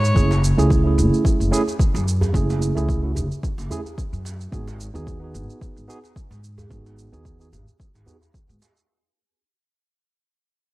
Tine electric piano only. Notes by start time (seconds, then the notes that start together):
0.14 A3 C#4 E4 G#4
0.57 A3 C#4 E4 G#4
0.83 A3 C#4 E4
0.87 G#4
1.51 A3 C#4 E4 G#4
2.33 A3 C#4 E4 G#4
2.75 A3 C#4 E4 G#4
3.02 A3 C#4 E4 F#4
3.70 A3 C#4 E4 G#4
4.52 B3 D#4 F#4 G#4
4.94 B3 D#4 F#4 G#4
5.20 B3 D#4 F#4
5.24 G#4
5.88 B3 D#4 F#4 G#4
6.70 B3 D#4 F#4 G#4
7.12 B3 D#4 F#4 G#4
7.39 B3 D#4 F#4 G#4
8.06 B3 D#4 F#4 G#4